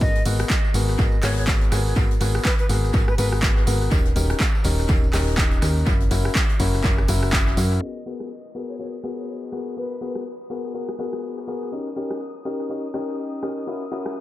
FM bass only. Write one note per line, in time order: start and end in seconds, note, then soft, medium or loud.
0.01 0.24 G#1 medium
0.26 0.45 G#1 medium
0.74 0.97 G#1 medium
0.99 1.21 G#1 medium
1.23 1.70 G#1 medium
1.72 1.94 G#1 medium
1.96 2.19 G#1 medium
2.21 2.40 G#1 medium
2.69 2.92 G#1 medium
2.94 3.16 G#1 medium
3.18 3.65 G#1 medium
3.67 3.89 G#1 medium
3.91 4.14 D#1 loud
4.16 4.35 D#1 loud
4.65 4.87 D#1 loud
4.89 5.11 D#1 loud
5.13 5.60 D#1 loud
5.62 5.85 D#2 medium
5.87 6.09 F#1 loud
6.11 6.30 F#1 medium
6.60 6.82 F#1 loud
6.84 7.06 F#1 medium
7.09 7.55 F#1 loud
7.57 7.80 F#2 medium